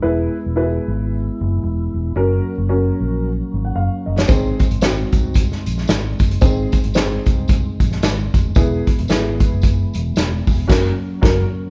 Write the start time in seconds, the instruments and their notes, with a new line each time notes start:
Already playing: tonewheel organ G#3
0.02 fingered electric bass E1, tonewheel organ B3 E4, upright piano E4 G#4 B4
0.46 fingered electric bass E1
0.56 upright piano E4 F#4 B4
0.63 upright piano G#4
0.88 fingered electric bass G#1
1.41 fingered electric bass F#1
1.63 fingered electric bass E1
1.94 fingered electric bass E1
2.15 fingered electric bass F#1, tonewheel organ F#3 A#3 C#4, upright piano C#4 F#4 A#4
2.58 fingered electric bass F#1
2.69 upright piano C#4 F#4 A#4
3.00 fingered electric bass A#1
3.54 fingered electric bass G#1
3.65 upright piano F#5
3.75 fingered electric bass F#1, upright piano F5
4.06 fingered electric bass F#1, upright piano D#5
4.18 upright piano C#5, snare
4.28 fingered electric bass G#1, tonewheel organ D#3 G#3 C4, upright piano C4 D#4 G#4, kick, closed hi-hat, tambourine
4.59 kick, closed hi-hat, tambourine
4.71 fingered electric bass G#1, closed hi-hat
4.81 upright piano C4 D#4 F#4, snare, closed hi-hat, tambourine
5.13 fingered electric bass C2, kick, closed hi-hat, tambourine
5.34 kick, closed hi-hat, tambourine
5.52 snare
5.66 fingered electric bass A#1, closed hi-hat, tambourine
5.78 snare
5.88 fingered electric bass G#1, snare, closed hi-hat, tambourine
6.19 fingered electric bass F#1, kick, closed hi-hat, tambourine
6.31 closed hi-hat
6.41 fingered electric bass G#1, upright piano C4 D#4 G#4, kick, closed hi-hat, tambourine
6.72 kick, closed hi-hat, tambourine
6.84 fingered electric bass G#1, closed hi-hat
6.94 upright piano C4 D#4 G#4, snare, closed hi-hat, tambourine
7.26 fingered electric bass C2, kick, closed hi-hat, tambourine
7.48 kick, closed hi-hat, tambourine
7.80 fingered electric bass A#1, kick, closed hi-hat, tambourine
7.92 snare
8.03 fingered electric bass G#1, snare, closed hi-hat, tambourine
8.34 fingered electric bass F1, kick, closed hi-hat, tambourine
8.55 fingered electric bass E1, tonewheel organ E3 B3, upright piano B3 E4 G#4, kick, closed hi-hat, tambourine
8.87 kick, closed hi-hat, tambourine
8.98 fingered electric bass E1, closed hi-hat
9.08 fingered electric bass G#1, upright piano B3 E4 G#4, snare, closed hi-hat, tambourine
9.40 kick, closed hi-hat, tambourine
9.53 fingered electric bass F#1
9.62 kick, closed hi-hat, tambourine
9.93 fingered electric bass E1, closed hi-hat, tambourine
10.16 fingered electric bass E1, snare, closed hi-hat, tambourine
10.47 fingered electric bass E1, kick, open hi-hat, tambourine
10.67 fingered electric bass F#1, tonewheel organ F#3 A#3 C#4, upright piano C#4 F#4 A#4, kick, snare, crash
11.21 fingered electric bass F#1, upright piano C#4 F#4 A#4, kick, snare